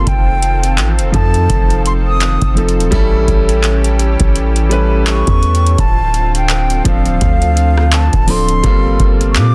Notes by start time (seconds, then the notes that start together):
Already playing: F4 A4
0.07 F1 D#3 C4 G5, kick, closed hi-hat
0.42 closed hi-hat
0.63 closed hi-hat
0.78 A1, clap, closed hi-hat
0.99 F1, closed hi-hat
1.12 F2 F3 A3 C4 D#4 A4 A5, kick, closed hi-hat
1.34 closed hi-hat
1.50 F1, kick, closed hi-hat
1.70 closed hi-hat
1.86 C6, closed hi-hat
2.07 D#6
2.21 clap, closed hi-hat
2.42 F1, kick, closed hi-hat
2.55 F3 A3 C4 D#4 A4, closed hi-hat
2.69 closed hi-hat
2.78 D#1, closed hi-hat
2.91 A1 E3 G3 A3 C#4 E4 G4 A4, kick, closed hi-hat
3.28 A1, kick, closed hi-hat
3.49 closed hi-hat
3.64 clap, closed hi-hat
3.84 closed hi-hat
3.99 closed hi-hat
4.20 A1, kick, closed hi-hat
4.36 closed hi-hat
4.56 closed hi-hat
4.69 G3 A3 C#4 E4 B4, closed hi-hat
5.06 C#6, clap, closed hi-hat
5.27 E2, kick, closed hi-hat
5.43 closed hi-hat
5.55 closed hi-hat
5.67 closed hi-hat
5.78 D1 D3 C4 F4 A5, kick, closed hi-hat
6.14 closed hi-hat
6.35 G5, closed hi-hat
6.50 clap, closed hi-hat
6.70 closed hi-hat
6.84 D1 F3 A3 C4 D4 A4 F5, kick, closed hi-hat
7.06 closed hi-hat
7.21 D2, kick, closed hi-hat
7.42 closed hi-hat
7.57 closed hi-hat
7.77 cross-stick
7.92 A5, clap, closed hi-hat
8.13 D1, kick, closed hi-hat
8.27 F3 A3 C4 D4 A4 C6, open hi-hat
8.48 closed hi-hat
8.63 G1 C3 G3 A#3 C4 F4 A4, kick, closed hi-hat
9.00 G1, kick, closed hi-hat
9.21 closed hi-hat
9.31 C#6
9.36 A#2 D6, clap, closed hi-hat